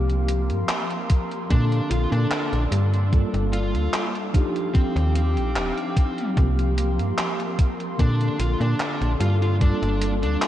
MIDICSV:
0, 0, Header, 1, 6, 480
1, 0, Start_track
1, 0, Key_signature, -2, "major"
1, 0, Tempo, 810811
1, 1849, Time_signature, 4, 2, 24, 8
1, 6201, End_track
2, 0, Start_track
2, 0, Title_t, "Ambient pad"
2, 0, Program_c, 0, 92
2, 0, Note_on_c, 0, 70, 83
2, 0, Note_on_c, 0, 77, 75
2, 0, Note_on_c, 0, 84, 90
2, 865, Note_off_c, 0, 77, 0
2, 881, Note_off_c, 0, 70, 0
2, 888, Note_on_c, 0, 74, 76
2, 889, Note_on_c, 0, 69, 87
2, 1832, Note_off_c, 0, 84, 0
2, 1839, Note_off_c, 0, 74, 0
2, 1848, Note_on_c, 0, 77, 74
2, 2552, Note_off_c, 0, 69, 0
2, 2569, Note_on_c, 0, 86, 94
2, 2570, Note_on_c, 0, 67, 85
2, 3757, Note_off_c, 0, 86, 0
2, 3758, Note_off_c, 0, 67, 0
2, 3769, Note_on_c, 0, 84, 90
2, 3770, Note_on_c, 0, 70, 82
2, 4705, Note_off_c, 0, 77, 0
2, 4720, Note_off_c, 0, 70, 0
2, 4732, Note_on_c, 0, 74, 74
2, 4734, Note_on_c, 0, 69, 83
2, 5670, Note_off_c, 0, 84, 0
2, 5681, Note_off_c, 0, 74, 0
2, 5688, Note_on_c, 0, 77, 74
2, 6201, Note_off_c, 0, 69, 0
2, 6201, Note_off_c, 0, 77, 0
2, 6201, End_track
3, 0, Start_track
3, 0, Title_t, "Lead electric guitar"
3, 0, Program_c, 1, 29
3, 891, Note_on_c, 1, 62, 88
3, 1108, Note_off_c, 1, 62, 0
3, 1129, Note_on_c, 1, 65, 94
3, 1231, Note_off_c, 1, 65, 0
3, 1254, Note_on_c, 1, 62, 89
3, 1541, Note_off_c, 1, 62, 0
3, 2086, Note_on_c, 1, 65, 91
3, 2379, Note_off_c, 1, 65, 0
3, 2805, Note_on_c, 1, 60, 89
3, 3024, Note_off_c, 1, 60, 0
3, 3049, Note_on_c, 1, 60, 92
3, 3724, Note_off_c, 1, 60, 0
3, 4733, Note_on_c, 1, 62, 94
3, 4949, Note_off_c, 1, 62, 0
3, 4974, Note_on_c, 1, 65, 93
3, 5073, Note_off_c, 1, 65, 0
3, 5098, Note_on_c, 1, 62, 90
3, 5382, Note_off_c, 1, 62, 0
3, 5450, Note_on_c, 1, 65, 88
3, 5531, Note_off_c, 1, 65, 0
3, 5577, Note_on_c, 1, 65, 78
3, 5649, Note_off_c, 1, 65, 0
3, 5692, Note_on_c, 1, 62, 90
3, 5982, Note_off_c, 1, 62, 0
3, 6054, Note_on_c, 1, 62, 94
3, 6201, Note_off_c, 1, 62, 0
3, 6201, End_track
4, 0, Start_track
4, 0, Title_t, "Tine electric piano"
4, 0, Program_c, 2, 4
4, 0, Note_on_c, 2, 53, 80
4, 0, Note_on_c, 2, 58, 75
4, 0, Note_on_c, 2, 60, 74
4, 0, Note_on_c, 2, 67, 87
4, 34, Control_c, 2, 64, 127
4, 841, Note_off_c, 2, 53, 0
4, 844, Note_off_c, 2, 58, 0
4, 847, Note_off_c, 2, 60, 0
4, 850, Note_off_c, 2, 67, 0
4, 882, Note_on_c, 2, 50, 81
4, 889, Note_on_c, 2, 58, 71
4, 895, Note_on_c, 2, 60, 68
4, 897, Control_c, 2, 64, 0
4, 899, Note_on_c, 2, 69, 85
4, 1004, Control_c, 2, 64, 127
4, 1801, Note_off_c, 2, 50, 0
4, 1804, Note_off_c, 2, 58, 0
4, 1807, Note_off_c, 2, 60, 0
4, 1809, Note_off_c, 2, 69, 0
4, 1839, Note_on_c, 2, 55, 82
4, 1845, Note_on_c, 2, 58, 76
4, 1852, Note_on_c, 2, 65, 75
4, 1856, Control_c, 2, 64, 0
4, 1857, Note_on_c, 2, 69, 91
4, 1959, Control_c, 2, 64, 127
4, 2519, Note_off_c, 2, 55, 0
4, 2522, Note_off_c, 2, 58, 0
4, 2525, Note_off_c, 2, 65, 0
4, 2528, Note_off_c, 2, 69, 0
4, 2561, Note_on_c, 2, 53, 89
4, 2567, Note_on_c, 2, 62, 84
4, 2573, Note_on_c, 2, 63, 83
4, 2578, Control_c, 2, 64, 0
4, 2578, Note_on_c, 2, 67, 103
4, 2696, Control_c, 2, 64, 127
4, 3720, Note_off_c, 2, 53, 0
4, 3723, Note_off_c, 2, 62, 0
4, 3726, Note_off_c, 2, 63, 0
4, 3728, Note_off_c, 2, 67, 0
4, 3762, Note_on_c, 2, 53, 86
4, 3767, Note_on_c, 2, 58, 77
4, 3774, Note_on_c, 2, 60, 77
4, 3776, Control_c, 2, 64, 0
4, 3780, Note_on_c, 2, 67, 90
4, 3870, Control_c, 2, 64, 127
4, 4681, Note_off_c, 2, 53, 0
4, 4683, Note_off_c, 2, 58, 0
4, 4687, Note_off_c, 2, 60, 0
4, 4689, Note_off_c, 2, 67, 0
4, 4720, Note_on_c, 2, 50, 82
4, 4726, Note_on_c, 2, 58, 70
4, 4734, Note_on_c, 2, 60, 72
4, 4738, Control_c, 2, 64, 0
4, 4739, Note_on_c, 2, 69, 88
4, 4852, Control_c, 2, 64, 127
4, 5640, Note_off_c, 2, 50, 0
4, 5643, Note_off_c, 2, 58, 0
4, 5646, Note_off_c, 2, 60, 0
4, 5649, Note_off_c, 2, 69, 0
4, 5678, Note_on_c, 2, 55, 84
4, 5684, Note_on_c, 2, 58, 75
4, 5690, Note_on_c, 2, 65, 78
4, 5696, Control_c, 2, 64, 0
4, 5696, Note_on_c, 2, 69, 96
4, 5806, Control_c, 2, 64, 127
4, 6201, Note_off_c, 2, 55, 0
4, 6201, Note_off_c, 2, 58, 0
4, 6201, Note_off_c, 2, 65, 0
4, 6201, Note_off_c, 2, 69, 0
4, 6201, End_track
5, 0, Start_track
5, 0, Title_t, "FM bass"
5, 0, Program_c, 3, 39
5, 0, Note_on_c, 3, 36, 101
5, 299, Note_on_c, 3, 43, 95
5, 307, Note_off_c, 3, 36, 0
5, 380, Note_off_c, 3, 43, 0
5, 892, Note_on_c, 3, 46, 90
5, 1071, Note_off_c, 3, 46, 0
5, 1129, Note_on_c, 3, 34, 79
5, 1223, Note_off_c, 3, 34, 0
5, 1255, Note_on_c, 3, 46, 95
5, 1339, Note_off_c, 3, 46, 0
5, 1496, Note_on_c, 3, 34, 85
5, 1579, Note_off_c, 3, 34, 0
5, 1608, Note_on_c, 3, 43, 93
5, 1922, Note_off_c, 3, 43, 0
5, 1975, Note_on_c, 3, 31, 90
5, 2214, Note_on_c, 3, 38, 98
5, 2223, Note_off_c, 3, 31, 0
5, 2298, Note_off_c, 3, 38, 0
5, 2935, Note_on_c, 3, 39, 94
5, 3177, Note_on_c, 3, 34, 83
5, 3186, Note_off_c, 3, 39, 0
5, 3289, Note_on_c, 3, 27, 100
5, 3298, Note_off_c, 3, 34, 0
5, 3383, Note_off_c, 3, 27, 0
5, 3772, Note_on_c, 3, 36, 105
5, 4134, Note_on_c, 3, 43, 98
5, 4143, Note_off_c, 3, 36, 0
5, 4218, Note_off_c, 3, 43, 0
5, 4731, Note_on_c, 3, 46, 86
5, 4910, Note_off_c, 3, 46, 0
5, 4970, Note_on_c, 3, 34, 77
5, 5063, Note_off_c, 3, 34, 0
5, 5094, Note_on_c, 3, 46, 97
5, 5178, Note_off_c, 3, 46, 0
5, 5336, Note_on_c, 3, 34, 84
5, 5419, Note_off_c, 3, 34, 0
5, 5447, Note_on_c, 3, 43, 94
5, 5761, Note_off_c, 3, 43, 0
5, 5815, Note_on_c, 3, 31, 89
5, 6056, Note_on_c, 3, 38, 97
5, 6064, Note_off_c, 3, 31, 0
5, 6139, Note_off_c, 3, 38, 0
5, 6201, End_track
6, 0, Start_track
6, 0, Title_t, "Drums"
6, 57, Note_on_c, 9, 42, 39
6, 117, Note_off_c, 9, 42, 0
6, 169, Note_on_c, 9, 42, 86
6, 228, Note_off_c, 9, 42, 0
6, 296, Note_on_c, 9, 42, 39
6, 355, Note_off_c, 9, 42, 0
6, 408, Note_on_c, 9, 39, 124
6, 408, Note_on_c, 9, 42, 65
6, 467, Note_off_c, 9, 39, 0
6, 467, Note_off_c, 9, 42, 0
6, 536, Note_on_c, 9, 42, 39
6, 595, Note_off_c, 9, 42, 0
6, 649, Note_on_c, 9, 42, 86
6, 651, Note_on_c, 9, 36, 109
6, 709, Note_off_c, 9, 42, 0
6, 710, Note_off_c, 9, 36, 0
6, 778, Note_on_c, 9, 42, 38
6, 838, Note_off_c, 9, 42, 0
6, 891, Note_on_c, 9, 42, 60
6, 892, Note_on_c, 9, 36, 120
6, 950, Note_off_c, 9, 42, 0
6, 951, Note_off_c, 9, 36, 0
6, 1019, Note_on_c, 9, 42, 37
6, 1078, Note_off_c, 9, 42, 0
6, 1130, Note_on_c, 9, 42, 90
6, 1189, Note_off_c, 9, 42, 0
6, 1258, Note_on_c, 9, 42, 40
6, 1317, Note_off_c, 9, 42, 0
6, 1370, Note_on_c, 9, 39, 118
6, 1370, Note_on_c, 9, 42, 59
6, 1429, Note_off_c, 9, 39, 0
6, 1429, Note_off_c, 9, 42, 0
6, 1497, Note_on_c, 9, 42, 39
6, 1556, Note_off_c, 9, 42, 0
6, 1610, Note_on_c, 9, 42, 93
6, 1669, Note_off_c, 9, 42, 0
6, 1738, Note_on_c, 9, 42, 38
6, 1797, Note_off_c, 9, 42, 0
6, 1851, Note_on_c, 9, 36, 120
6, 1851, Note_on_c, 9, 42, 61
6, 1910, Note_off_c, 9, 36, 0
6, 1911, Note_off_c, 9, 42, 0
6, 1978, Note_on_c, 9, 42, 38
6, 2037, Note_off_c, 9, 42, 0
6, 2091, Note_on_c, 9, 42, 87
6, 2150, Note_off_c, 9, 42, 0
6, 2218, Note_on_c, 9, 42, 39
6, 2278, Note_off_c, 9, 42, 0
6, 2330, Note_on_c, 9, 39, 113
6, 2330, Note_on_c, 9, 42, 65
6, 2389, Note_off_c, 9, 39, 0
6, 2389, Note_off_c, 9, 42, 0
6, 2458, Note_on_c, 9, 42, 38
6, 2518, Note_off_c, 9, 42, 0
6, 2571, Note_on_c, 9, 36, 106
6, 2572, Note_on_c, 9, 42, 88
6, 2630, Note_off_c, 9, 36, 0
6, 2632, Note_off_c, 9, 42, 0
6, 2699, Note_on_c, 9, 42, 36
6, 2758, Note_off_c, 9, 42, 0
6, 2811, Note_on_c, 9, 36, 121
6, 2811, Note_on_c, 9, 42, 63
6, 2870, Note_off_c, 9, 36, 0
6, 2871, Note_off_c, 9, 42, 0
6, 2939, Note_on_c, 9, 42, 37
6, 2998, Note_off_c, 9, 42, 0
6, 3051, Note_on_c, 9, 42, 88
6, 3110, Note_off_c, 9, 42, 0
6, 3179, Note_on_c, 9, 42, 40
6, 3238, Note_off_c, 9, 42, 0
6, 3292, Note_on_c, 9, 39, 111
6, 3292, Note_on_c, 9, 42, 60
6, 3351, Note_off_c, 9, 39, 0
6, 3351, Note_off_c, 9, 42, 0
6, 3419, Note_on_c, 9, 42, 38
6, 3478, Note_off_c, 9, 42, 0
6, 3531, Note_on_c, 9, 36, 97
6, 3532, Note_on_c, 9, 42, 94
6, 3590, Note_off_c, 9, 36, 0
6, 3592, Note_off_c, 9, 42, 0
6, 3659, Note_on_c, 9, 42, 37
6, 3719, Note_off_c, 9, 42, 0
6, 3772, Note_on_c, 9, 36, 113
6, 3772, Note_on_c, 9, 42, 66
6, 3831, Note_off_c, 9, 36, 0
6, 3831, Note_off_c, 9, 42, 0
6, 3901, Note_on_c, 9, 42, 40
6, 3960, Note_off_c, 9, 42, 0
6, 4013, Note_on_c, 9, 42, 89
6, 4072, Note_off_c, 9, 42, 0
6, 4141, Note_on_c, 9, 42, 41
6, 4200, Note_off_c, 9, 42, 0
6, 4252, Note_on_c, 9, 39, 114
6, 4252, Note_on_c, 9, 42, 67
6, 4311, Note_off_c, 9, 39, 0
6, 4311, Note_off_c, 9, 42, 0
6, 4380, Note_on_c, 9, 42, 39
6, 4439, Note_off_c, 9, 42, 0
6, 4492, Note_on_c, 9, 36, 102
6, 4492, Note_on_c, 9, 42, 91
6, 4551, Note_off_c, 9, 36, 0
6, 4551, Note_off_c, 9, 42, 0
6, 4618, Note_on_c, 9, 42, 39
6, 4677, Note_off_c, 9, 42, 0
6, 4732, Note_on_c, 9, 36, 114
6, 4732, Note_on_c, 9, 42, 66
6, 4791, Note_off_c, 9, 36, 0
6, 4791, Note_off_c, 9, 42, 0
6, 4859, Note_on_c, 9, 42, 41
6, 4918, Note_off_c, 9, 42, 0
6, 4970, Note_on_c, 9, 42, 95
6, 5030, Note_off_c, 9, 42, 0
6, 5098, Note_on_c, 9, 42, 40
6, 5157, Note_off_c, 9, 42, 0
6, 5210, Note_on_c, 9, 39, 107
6, 5210, Note_on_c, 9, 42, 64
6, 5269, Note_off_c, 9, 39, 0
6, 5269, Note_off_c, 9, 42, 0
6, 5338, Note_on_c, 9, 42, 39
6, 5397, Note_off_c, 9, 42, 0
6, 5450, Note_on_c, 9, 42, 99
6, 5509, Note_off_c, 9, 42, 0
6, 5578, Note_on_c, 9, 42, 38
6, 5637, Note_off_c, 9, 42, 0
6, 5690, Note_on_c, 9, 42, 67
6, 5691, Note_on_c, 9, 36, 112
6, 5749, Note_off_c, 9, 42, 0
6, 5750, Note_off_c, 9, 36, 0
6, 5818, Note_on_c, 9, 42, 42
6, 5877, Note_off_c, 9, 42, 0
6, 5929, Note_on_c, 9, 42, 93
6, 5988, Note_off_c, 9, 42, 0
6, 6056, Note_on_c, 9, 42, 41
6, 6115, Note_off_c, 9, 42, 0
6, 6168, Note_on_c, 9, 39, 116
6, 6168, Note_on_c, 9, 42, 69
6, 6201, Note_off_c, 9, 39, 0
6, 6201, Note_off_c, 9, 42, 0
6, 6201, End_track
0, 0, End_of_file